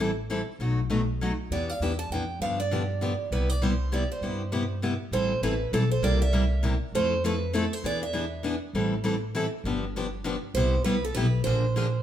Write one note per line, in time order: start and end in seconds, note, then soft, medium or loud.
0.00 0.41 A1 medium
0.00 0.10 G3 medium
0.00 0.10 C4 medium
0.00 0.10 E4 medium
0.00 0.10 A4 medium
0.30 0.40 E3 medium
0.30 0.40 G3 medium
0.30 0.40 C4 medium
0.30 0.40 E4 medium
0.30 0.40 A4 medium
0.59 1.32 B1 medium
0.59 0.79 B2 medium
0.59 0.79 F#3 medium
0.59 0.79 A3 medium
0.59 0.79 D#4 medium
0.59 0.79 F#4 medium
0.90 1.00 B2 medium
0.90 1.00 F#3 medium
0.90 1.00 A3 medium
0.90 1.00 D#4 medium
0.90 1.01 F#4 medium
1.21 1.31 B2 medium
1.21 1.31 F#3 medium
1.21 1.31 A3 medium
1.21 1.32 D#4 medium
1.21 1.32 F#4 medium
1.50 1.74 E2 medium
1.50 1.70 E3 medium
1.50 1.70 B3 medium
1.50 1.70 D4 medium
1.50 1.70 G4 medium
1.50 1.70 D5 medium
1.70 1.82 F5 medium
1.80 2.06 E2 medium
1.80 1.91 E3 medium
1.80 1.92 B3 medium
1.80 1.92 D4 medium
1.80 1.92 G4 medium
1.80 1.98 E5 medium
1.99 2.11 A5 medium
2.10 2.36 F2 medium
2.10 2.22 E3 medium
2.10 2.22 B3 medium
2.10 2.22 D4 medium
2.10 2.22 G4 medium
2.10 2.39 G5 medium
2.40 3.13 G2 medium
2.40 2.60 D3 medium
2.40 2.60 F3 medium
2.40 2.60 B3 medium
2.40 2.61 D4 medium
2.40 2.61 G4 medium
2.40 2.57 F5 medium
2.60 3.15 D5 medium
2.71 2.81 D3 medium
2.71 2.82 F3 medium
2.71 2.82 B3 medium
2.71 2.82 D4 medium
2.71 2.82 G4 medium
3.01 3.11 D3 medium
3.01 3.12 F3 medium
3.01 3.12 B3 medium
3.01 3.12 D4 medium
3.01 3.12 G4 medium
3.31 4.03 C2 medium
3.31 3.51 C3 medium
3.31 3.51 G3 medium
3.31 3.51 B3 medium
3.31 3.51 E4 medium
3.31 3.51 G4 medium
3.31 3.50 B4 medium
3.50 3.63 D5 medium
3.62 3.72 C3 medium
3.62 3.72 G3 medium
3.62 3.72 B3 medium
3.62 3.72 E4 medium
3.62 3.72 G4 medium
3.62 3.93 C5 medium
3.92 4.02 C3 medium
3.92 4.02 G3 medium
3.92 4.02 B3 medium
3.92 4.02 E4 medium
3.92 4.03 G4 medium
3.92 4.09 D5 medium
4.12 4.79 C5 medium
4.21 4.94 G2 medium
4.21 4.41 C3 medium
4.21 4.41 G3 medium
4.21 4.41 B3 medium
4.21 4.42 E4 medium
4.21 4.42 G4 medium
4.52 4.62 C3 medium
4.52 4.62 G3 medium
4.52 4.62 B3 medium
4.52 4.63 E4 medium
4.52 4.63 G4 medium
4.82 4.93 C3 medium
4.82 4.93 G3 medium
4.82 4.93 B3 medium
4.82 4.93 E4 medium
4.82 4.93 G4 medium
5.11 5.36 A1 medium
5.11 5.31 E3 medium
5.11 5.32 G3 medium
5.11 5.32 C4 medium
5.11 5.32 E4 medium
5.11 5.32 A4 medium
5.11 5.43 C5 medium
5.41 5.67 A1 medium
5.41 5.53 E3 medium
5.41 5.53 G3 medium
5.41 5.53 C4 medium
5.41 5.54 E4 medium
5.41 5.54 A4 medium
5.41 5.71 B4 medium
5.72 5.98 B1 medium
5.72 5.83 E3 medium
5.72 5.83 G3 medium
5.72 5.83 C4 medium
5.72 5.84 E4 medium
5.72 5.83 A4 medium
5.72 5.89 A4 medium
5.91 6.03 C5 medium
6.02 6.75 C2 medium
6.02 6.22 C3 medium
6.02 6.22 G3 medium
6.02 6.22 A#3 medium
6.02 6.22 E4 medium
6.02 6.22 G4 medium
6.02 6.21 D5 medium
6.22 6.77 E5 loud
6.33 6.43 C3 medium
6.33 6.43 G3 medium
6.33 6.43 A#3 medium
6.33 6.44 E4 medium
6.33 6.44 G4 medium
6.63 6.73 C3 medium
6.63 6.73 G3 medium
6.63 6.74 A#3 medium
6.63 6.74 E4 medium
6.63 6.74 G4 loud
6.92 7.65 F2 medium
6.92 7.13 F3 medium
6.92 7.13 A3 medium
6.92 7.13 C4 medium
6.92 7.13 E4 medium
6.92 7.13 A4 medium
6.92 7.22 C5 loud
7.24 7.34 F3 medium
7.24 7.34 A3 medium
7.24 7.34 C4 medium
7.24 7.35 E4 medium
7.24 7.35 A4 medium
7.24 7.53 B4 medium
7.53 7.64 F3 medium
7.53 7.64 A3 medium
7.53 7.64 C4 medium
7.53 7.64 E4 medium
7.53 7.64 A4 medium
7.53 7.73 A4 medium
7.73 7.85 C5 medium
7.83 8.56 E2 medium
7.83 8.03 E3 medium
7.83 8.03 B3 medium
7.83 8.03 D4 medium
7.83 8.03 G#4 medium
7.83 8.01 D5 medium
8.03 8.58 E5 medium
8.13 8.24 E3 medium
8.13 8.24 B3 medium
8.13 8.24 D4 medium
8.13 8.24 G#4 medium
8.43 8.54 E3 medium
8.43 8.54 B3 medium
8.43 8.54 D4 medium
8.43 8.55 G#4 medium
8.73 9.46 A1 medium
8.73 8.93 E3 medium
8.73 8.93 G3 medium
8.73 8.93 C4 medium
8.73 8.94 E4 medium
8.73 8.94 A4 medium
9.04 9.14 E3 medium
9.04 9.14 G3 medium
9.04 9.15 C4 medium
9.04 9.15 E4 medium
9.04 9.15 A4 medium
9.35 9.45 E3 medium
9.35 9.45 G3 medium
9.35 9.45 C4 medium
9.35 9.45 E4 medium
9.35 9.45 A4 medium
9.64 10.36 G1 medium
9.64 9.84 D3 medium
9.64 9.84 F3 medium
9.64 9.84 B3 medium
9.64 9.84 D4 medium
9.64 9.84 G4 medium
9.96 10.06 D3 medium
9.96 10.06 F3 medium
9.96 10.06 B3 medium
9.96 10.06 D4 medium
9.96 10.06 G4 medium
10.24 10.35 D3 medium
10.24 10.35 F3 medium
10.24 10.35 B3 medium
10.24 10.35 D4 medium
10.24 10.35 G4 medium
10.54 10.78 C2 medium
10.54 10.74 C3 medium
10.54 10.74 G3 medium
10.54 10.75 B3 medium
10.54 10.75 E4 medium
10.54 10.75 G4 medium
10.54 10.84 C5 loud
10.84 11.10 C2 medium
10.84 10.95 C3 medium
10.84 10.95 G3 medium
10.84 10.95 B3 medium
10.84 10.96 E4 medium
10.84 10.96 G4 medium
10.84 11.03 B4 medium
11.05 11.14 A4 medium
11.15 11.40 B1 medium
11.15 11.25 C3 medium
11.15 11.26 G3 medium
11.15 11.26 B3 medium
11.15 11.26 E4 medium
11.15 11.26 G4 medium
11.15 11.43 B4 medium
11.44 12.03 A#1 medium
11.44 11.64 D3 medium
11.44 11.64 F3 medium
11.44 11.64 A#3 medium
11.44 11.65 D4 medium
11.44 11.64 G#4 medium
11.44 12.03 C5 medium
11.76 11.86 D3 medium
11.76 11.86 F3 medium
11.76 11.86 A#3 medium
11.76 11.86 D4 medium
11.76 11.86 G#4 medium